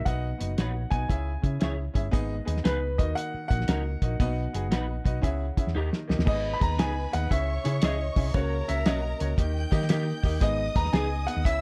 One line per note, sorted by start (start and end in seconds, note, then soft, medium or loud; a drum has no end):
0.05 0.32 B1 loud
0.05 0.88 B2 medium
0.05 0.27 B3 medium
0.05 0.28 D#4 medium
0.05 0.28 F#4 medium
0.05 0.28 D#5 loud
0.05 0.94 F#5 medium
0.05 kick loud
0.05 closed hi-hat medium
0.38 0.54 F#1 medium
0.38 0.50 B3 medium
0.38 0.51 D#4 medium
0.38 0.51 F#4 medium
0.38 0.51 D#5 medium
0.38 closed hi-hat medium
0.57 0.84 A#1 medium
0.57 0.79 B3 medium
0.57 0.79 D#4 medium
0.57 0.71 D#4 medium
0.57 0.79 F#4 medium
0.57 0.71 F#4 medium
0.57 0.72 B4 medium
0.57 0.80 C#5 medium
0.57 snare medium
0.57 closed hi-hat medium
0.91 1.05 B1 medium
0.91 1.03 B3 medium
0.91 1.03 D#4 medium
0.91 1.03 F#4 medium
0.91 1.03 D#5 medium
0.91 1.56 G#5 medium
0.91 kick medium
0.91 closed hi-hat medium
1.08 1.35 C#2 medium
1.08 1.91 C#3 medium
1.08 1.30 C#4 medium
1.08 1.31 E4 medium
1.08 1.31 G#4 medium
1.08 1.31 E5 loud
1.08 kick medium
1.08 closed hi-hat medium
1.42 1.57 C#3 loud
1.42 1.54 C#4 medium
1.42 1.54 E4 medium
1.42 1.54 G#4 medium
1.42 1.55 E5 medium
1.42 kick medium
1.42 closed hi-hat medium
1.59 1.87 C#2 medium
1.59 1.82 C#4 medium
1.59 1.82 E4 medium
1.59 1.74 E4 medium
1.59 1.82 G#4 medium
1.59 1.74 G#4 medium
1.59 1.75 C#5 medium
1.59 1.83 E5 medium
1.59 snare loud
1.59 closed hi-hat medium
1.94 2.09 G1 medium
1.94 2.06 C#4 medium
1.94 2.06 E4 medium
1.94 2.06 G#4 medium
1.94 2.07 E5 medium
1.94 kick medium
1.94 closed hi-hat medium
2.11 2.39 G#1 loud
2.11 2.94 G#2 medium
2.11 2.34 B3 loud
2.11 2.34 D#4 loud
2.11 2.34 G#4 loud
2.11 2.35 D#5 loud
2.11 kick medium
2.11 closed hi-hat medium
2.45 2.61 D#2 medium
2.45 2.57 B3 medium
2.45 2.57 D#4 medium
2.45 2.58 G#4 medium
2.45 2.58 D#5 medium
2.45 closed hi-hat medium
2.56 snare soft
2.63 2.99 C#2 medium
2.63 2.85 B3 medium
2.63 2.86 D#4 medium
2.63 2.77 D#4 medium
2.63 2.86 G#4 medium
2.63 2.77 G#4 medium
2.63 3.00 B4 medium
2.63 2.86 B4 medium
2.63 2.78 B4 medium
2.63 snare loud
2.63 closed hi-hat medium
2.98 3.12 D#2 medium
2.98 3.64 D#3 medium
2.98 3.36 A#3 medium
2.98 3.37 D#4 medium
2.98 3.37 F#4 medium
2.98 3.17 D#5 medium
2.98 3.37 D#5 medium
2.98 kick medium
2.98 closed hi-hat medium
3.15 3.47 F#5 loud
3.15 closed hi-hat medium
3.34 muted fingered electric bass stroke soft
3.48 3.64 A#1 medium
3.48 3.61 A#3 medium
3.48 3.61 D#4 medium
3.48 3.62 F#4 medium
3.48 3.62 D#5 medium
3.48 5.70 F#5 loud
3.48 kick medium
3.48 closed hi-hat medium
3.60 snare soft
3.68 3.94 C#2 loud
3.68 3.90 A#3 medium
3.68 3.81 D#4 medium
3.68 3.90 D#4 medium
3.68 3.81 F#4 medium
3.68 3.90 F#4 medium
3.68 3.81 A#4 medium
3.68 3.91 D#5 medium
3.68 snare loud
3.68 closed hi-hat medium
4.02 4.15 A#1 medium
4.02 4.13 A#3 medium
4.02 4.13 D#4 medium
4.02 4.14 F#4 medium
4.02 4.14 D#5 medium
4.02 kick medium
4.02 closed hi-hat medium
4.20 4.46 B1 medium
4.20 5.02 B2 medium
4.20 4.42 B3 loud
4.20 4.42 D#4 loud
4.20 4.42 F#4 loud
4.20 4.42 D#5 loud
4.20 kick loud
4.20 closed hi-hat medium
4.53 4.72 F#1 medium
4.53 4.65 B3 medium
4.53 4.65 D#4 medium
4.53 4.66 F#4 medium
4.53 4.66 G#4 medium
4.53 closed hi-hat medium
4.71 4.98 A#1 medium
4.71 4.93 B3 medium
4.71 4.93 D#4 medium
4.71 4.84 D#4 medium
4.71 4.93 F#4 medium
4.71 4.85 F#4 medium
4.71 4.85 B4 loud
4.71 4.94 D#5 medium
4.71 snare loud
4.71 closed hi-hat medium
5.04 5.19 B1 medium
5.04 5.16 B3 medium
5.04 5.17 D#4 medium
5.04 5.17 F#4 medium
5.04 5.17 D#5 medium
5.04 kick medium
5.04 closed hi-hat medium
5.22 5.49 C#2 medium
5.22 5.71 C#3 medium
5.22 5.44 C#4 loud
5.22 5.44 E4 medium
5.22 5.45 G#4 medium
5.22 5.45 E5 loud
5.22 kick medium
5.22 closed hi-hat medium
5.57 5.69 C#4 medium
5.57 5.68 E4 medium
5.57 5.69 G#4 medium
5.57 5.69 E5 medium
5.57 muted fingered electric bass stroke soft
5.57 kick medium
5.57 closed hi-hat medium
5.67 5.73 E2 medium
5.67 snare soft
5.74 5.89 D#2 loud
5.74 6.24 D#3 medium
5.74 5.96 A#3 medium
5.74 5.88 D#4 medium
5.74 5.97 D#4 medium
5.74 5.97 G4 medium
5.74 5.88 G4 medium
5.74 5.89 A#4 medium
5.74 5.97 D#5 medium
5.93 snare medium
6.08 6.16 C#2 medium
6.08 6.20 A#3 medium
6.08 6.20 D#4 medium
6.08 6.20 G4 medium
6.08 6.20 D#5 medium
6.08 snare medium
6.19 6.25 D#2 medium
6.19 snare medium
6.25 6.53 G#1 loud
6.25 7.08 G#2 medium
6.25 6.47 B3 medium
6.25 6.48 D#4 medium
6.25 6.48 G#4 medium
6.25 7.28 B4 medium
6.25 6.48 D#5 loud
6.25 6.54 D#5 medium
6.25 7.28 B5 medium
6.25 kick loud
6.25 crash medium
6.53 6.62 B5 medium
6.59 6.80 D#2 medium
6.59 6.71 B3 medium
6.59 6.72 D#4 medium
6.59 6.72 G#4 medium
6.59 6.72 D#5 medium
6.59 6.80 A#5 medium
6.59 kick loud
6.59 closed hi-hat medium
6.77 7.05 C#2 medium
6.77 6.99 B3 medium
6.77 7.00 D#4 medium
6.77 6.91 D#4 medium
6.77 7.00 G#4 medium
6.77 6.92 G#4 medium
6.77 6.92 B4 loud
6.77 7.00 D#5 medium
6.77 7.14 G#5 loud
6.77 snare loud
6.77 closed hi-hat medium
7.12 7.27 D#2 medium
7.12 7.24 B3 medium
7.12 7.24 D#4 medium
7.12 7.24 G#4 medium
7.12 7.24 D#5 medium
7.12 7.30 F#5 loud
7.12 closed hi-hat medium
7.30 7.57 C#2 loud
7.30 8.13 C#3 medium
7.30 7.52 C#4 medium
7.30 7.52 E4 medium
7.30 7.52 G#4 medium
7.30 8.32 C#5 medium
7.30 7.84 E5 loud
7.30 7.53 E5 medium
7.30 8.32 C#6 medium
7.30 kick medium
7.30 closed hi-hat medium
7.64 7.79 C#3 loud
7.64 7.76 C#4 medium
7.64 7.76 E4 medium
7.64 7.76 G#4 medium
7.64 7.76 E5 medium
7.64 closed hi-hat medium
7.82 8.08 C#2 medium
7.82 8.04 C#4 medium
7.82 8.04 E4 medium
7.82 7.95 E4 medium
7.82 8.04 G#4 medium
7.82 7.96 G#4 medium
7.82 7.96 C#5 medium
7.82 8.31 D#5 medium
7.82 8.05 E5 loud
7.82 snare loud
7.82 closed hi-hat loud
8.15 8.30 C2 medium
8.15 8.27 C#4 medium
8.15 8.27 E4 medium
8.15 8.28 G#4 medium
8.15 8.28 E5 medium
8.15 kick medium
8.15 open hi-hat medium
8.34 8.60 C#2 loud
8.34 9.17 C#3 medium
8.34 8.56 A#3 loud
8.34 8.56 C#4 medium
8.34 8.56 F#4 medium
8.34 9.36 A#4 medium
8.34 8.69 C#5 medium
8.34 8.57 C#5 loud
8.34 9.36 A#5 medium
8.34 kick loud
8.34 closed hi-hat medium
8.68 8.82 C#2 medium
8.68 8.79 A#3 medium
8.68 8.79 C#4 medium
8.68 8.80 F#4 medium
8.68 8.80 C#5 medium
8.68 8.85 E5 medium
8.68 closed hi-hat medium
8.85 9.12 B1 medium
8.85 9.07 A#3 medium
8.85 9.08 C#4 medium
8.85 8.99 C#4 medium
8.85 9.08 F#4 medium
8.85 8.99 F#4 loud
8.85 8.99 A#4 loud
8.85 9.08 C#5 medium
8.85 10.20 D#5 medium
8.85 snare loud
8.85 closed hi-hat medium
9.19 9.34 C#2 medium
9.19 9.31 A#3 medium
9.19 9.31 C#4 medium
9.19 9.32 F#4 medium
9.19 9.32 C#5 medium
9.19 closed hi-hat medium
9.37 9.64 D#2 loud
9.37 10.20 D#3 medium
9.37 9.59 A#3 medium
9.37 9.59 D#4 medium
9.37 9.60 G4 medium
9.37 9.60 D#5 medium
9.37 10.39 G5 medium
9.37 10.39 G6 medium
9.37 kick medium
9.37 closed hi-hat medium
9.71 10.11 D#3 medium
9.71 9.83 A#3 loud
9.71 9.83 D#4 loud
9.71 9.83 G4 loud
9.71 9.84 D#5 loud
9.71 kick medium
9.71 closed hi-hat medium
9.82 snare soft
9.89 10.11 A#3 loud
9.89 10.11 D#4 loud
9.89 10.02 D#4 medium
9.89 10.11 G4 loud
9.89 10.03 G4 medium
9.89 10.03 A#4 loud
9.89 10.12 D#5 loud
9.89 snare loud
9.89 closed hi-hat loud
10.23 10.37 D#2 medium
10.23 10.35 A#3 loud
10.23 10.35 D#4 medium
10.23 10.35 G4 medium
10.23 10.36 D#5 loud
10.23 kick medium
10.23 open hi-hat medium
10.40 10.68 G#1 loud
10.40 11.23 G#2 medium
10.40 10.62 B3 loud
10.40 10.63 D#4 medium
10.40 10.63 G#4 medium
10.40 10.74 D#5 medium
10.40 10.63 D#5 loud
10.40 11.43 D#5 medium
10.40 11.43 D#6 loud
10.40 kick loud
10.40 closed hi-hat medium
10.75 10.89 D#2 medium
10.75 10.86 B3 medium
10.75 10.87 D#4 medium
10.75 10.87 G#4 medium
10.75 10.87 B4 medium
10.75 10.94 A#5 loud
10.75 kick loud
10.75 closed hi-hat medium
10.85 snare soft
10.93 11.26 C#2 medium
10.93 11.15 B3 medium
10.93 11.06 D#4 medium
10.93 11.15 D#4 medium
10.93 11.06 G#4 loud
10.93 11.15 G#4 medium
10.93 11.07 B4 medium
10.93 11.16 D#5 medium
10.93 11.28 G#5 medium
10.93 snare loud
10.93 closed hi-hat medium
11.27 11.39 B3 medium
11.27 11.39 D#4 medium
11.27 11.39 G#4 medium
11.27 11.40 D#5 medium
11.27 11.43 F#5 loud
11.27 closed hi-hat medium
11.36 11.45 D#2 medium
11.45 11.61 C#2 loud
11.45 11.61 C#3 medium
11.45 11.61 C#4 medium
11.45 11.61 E4 medium
11.45 11.61 G#4 medium
11.45 11.61 E5 loud
11.45 11.61 E5 medium
11.45 11.61 E6 medium
11.45 kick medium
11.45 closed hi-hat medium